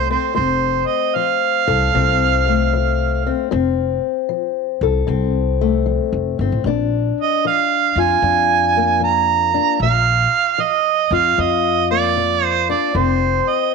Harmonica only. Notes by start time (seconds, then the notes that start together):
0.11 C5
0.35 C5
0.87 D#5
1.16 F5
7.21 D#5
7.47 F5
8.00 G#5
9.04 A#5
9.82 F5
10.61 D#5
11.14 F5
11.40 D#5
11.91 D5
12.45 C5
12.70 D5
12.97 C5
13.49 D#5